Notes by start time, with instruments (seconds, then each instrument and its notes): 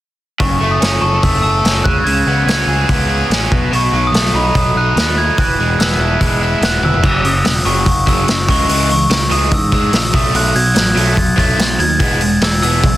0.40 picked electric bass F#1, overdriven electric guitar F#2, glockenspiel C#6, kick, open hi-hat
0.61 picked electric bass F#1, overdriven electric guitar A3
0.71 glockenspiel D#6
0.81 overdriven electric guitar C#4, snare, open hi-hat
1.01 picked electric bass F#1, overdriven electric guitar A4, glockenspiel C#6
1.22 picked electric bass F#1, overdriven electric guitar A3, glockenspiel E6, kick, open hi-hat
1.42 picked electric bass F#1, overdriven electric guitar A4, glockenspiel E6
1.64 picked electric bass F#1, overdriven electric guitar C#4, snare, open hi-hat
1.84 picked electric bass C#2, overdriven electric guitar C#3, glockenspiel F#6, kick
2.04 picked electric bass C#2, overdriven electric guitar C#3, glockenspiel G#6, open hi-hat
2.26 picked electric bass C#2, overdriven electric guitar B3
2.46 picked electric bass C#2, overdriven electric guitar C#4, glockenspiel G#6, snare, open hi-hat
2.67 picked electric bass C#2, overdriven electric guitar G#4
2.89 overdriven electric guitar B3, kick, open hi-hat
3.10 overdriven electric guitar G#4
3.30 picked electric bass A1, overdriven electric guitar C#4, snare, open hi-hat
3.51 picked electric bass B1, overdriven electric guitar B2, kick
3.72 picked electric bass B1, overdriven electric guitar B2, glockenspiel C#6, open hi-hat
3.92 picked electric bass B1, overdriven electric guitar F#3
4.07 glockenspiel D#6
4.12 picked electric bass B1, overdriven electric guitar A3, snare, open hi-hat
4.25 snare
4.33 picked electric bass B1, overdriven electric guitar D#4, glockenspiel B5
4.55 picked electric bass B1, overdriven electric guitar F#3, glockenspiel D#6, kick, open hi-hat
4.75 picked electric bass B1, overdriven electric guitar D#4, glockenspiel F#6
4.96 picked electric bass D#2, overdriven electric guitar A3, snare, open hi-hat
5.18 overdriven electric guitar D#4, glockenspiel G#6
5.38 picked electric bass E1, overdriven electric guitar E3, glockenspiel F#6, kick, open hi-hat
5.59 picked electric bass E1, overdriven electric guitar G#3
5.79 picked electric bass E1, overdriven electric guitar B3, glockenspiel E6, snare, open hi-hat
5.92 snare
5.98 picked electric bass E1, overdriven electric guitar E4
6.20 picked electric bass E1, overdriven electric guitar G#3, kick, open hi-hat
6.42 overdriven electric guitar E4
6.61 picked electric bass E1, overdriven electric guitar B3, glockenspiel F#6, snare, open hi-hat
6.81 picked electric bass E1, overdriven electric guitar E4, glockenspiel E6, high tom
6.94 floor tom
7.03 picked electric bass F#1, overdriven electric guitar F#2 C#3 F#3, glockenspiel E6, kick, crash
7.23 picked electric bass F#1, overdriven electric guitar F#2 C#3, glockenspiel D#6, open hi-hat
7.44 picked electric bass E1, overdriven electric guitar F#2 C#3, snare, open hi-hat
7.65 picked electric bass F#1, overdriven electric guitar F#2 C#3 F#3, glockenspiel C#6, open hi-hat
7.86 picked electric bass F#1, overdriven electric guitar F#2 C#3, glockenspiel C#6, kick, open hi-hat
8.07 picked electric bass F#1, overdriven electric guitar F#2 C#3 F#3, glockenspiel E6, kick, open hi-hat
8.28 picked electric bass F#1, overdriven electric guitar F#2 C#3, snare, open hi-hat
8.49 picked electric bass C#2, overdriven electric guitar C#3 E3 G#3, glockenspiel C#6, kick, open hi-hat
8.68 picked electric bass C#2, overdriven electric guitar C#3 E3 G#3, open hi-hat
8.90 overdriven electric guitar C#3 E3, glockenspiel C#6, open hi-hat
9.10 picked electric bass C#2, overdriven electric guitar C#3 E3, snare, open hi-hat
9.30 picked electric bass C#2, overdriven electric guitar C#3 E3 G#3, glockenspiel D#6, open hi-hat
9.52 picked electric bass G#2, overdriven electric guitar C#3 E3, glockenspiel E6, kick, open hi-hat
9.72 overdriven electric guitar C#3 E3 G#3, glockenspiel E6, kick, open hi-hat
9.92 picked electric bass A#1, overdriven electric guitar C#3 E3, snare, open hi-hat
10.13 picked electric bass B1, overdriven electric guitar B2 F#3 A3, glockenspiel D#6, kick, open hi-hat
10.34 picked electric bass B1, overdriven electric guitar B2 F#3 A3, glockenspiel F#6, open hi-hat
10.55 picked electric bass B1, overdriven electric guitar B2 F#3, glockenspiel G#6, open hi-hat
10.74 picked electric bass A1, overdriven electric guitar B2 F#3, snare, open hi-hat
10.95 picked electric bass B1, overdriven electric guitar B2 F#3 A3, open hi-hat
11.16 picked electric bass B1, overdriven electric guitar B2 F#3, glockenspiel A6, kick, open hi-hat
11.36 picked electric bass B1, overdriven electric guitar B2 F#3 A3, glockenspiel A6, kick, open hi-hat
11.57 picked electric bass B1, overdriven electric guitar B2 F#3, snare, open hi-hat
11.79 picked electric bass D#2, overdriven electric guitar B2 F#3, glockenspiel G#6, open hi-hat
12.00 picked electric bass E1, overdriven electric guitar E3 G#3 B3, kick, open hi-hat
12.21 overdriven electric guitar E3 G#3, open hi-hat
12.41 picked electric bass E1, overdriven electric guitar E3 G#3, glockenspiel E6, snare, open hi-hat
12.62 picked electric bass E1, overdriven electric guitar E3 G#3 B3, glockenspiel E6, open hi-hat
12.83 picked electric bass B1, overdriven electric guitar E3 G#3, kick, open hi-hat